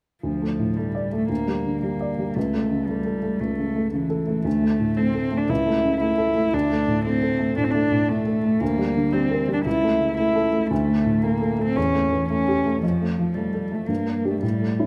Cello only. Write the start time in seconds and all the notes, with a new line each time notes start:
0.23 F3
0.76 G3
1.17 A3
1.29 A#3
1.82 A#3
2.35 A3
2.86 G3
3.40 A3
3.93 E3
4.46 A3
4.97 C4
5.37 D4
5.50 E4
6.01 E4
6.54 D4
7.05 C4
7.57 D4
7.64 C4
7.70 D4
8.09 A3
8.62 A#3
9.13 C4
9.53 D4
9.65 E4
10.18 E4
10.70 A3
11.23 A#3
11.64 C4
11.76 C#4
12.29 C#4
12.82 F3
13.35 G3
13.75 A3
13.88 A#3
14.30 A3
14.42 G3
14.83 E3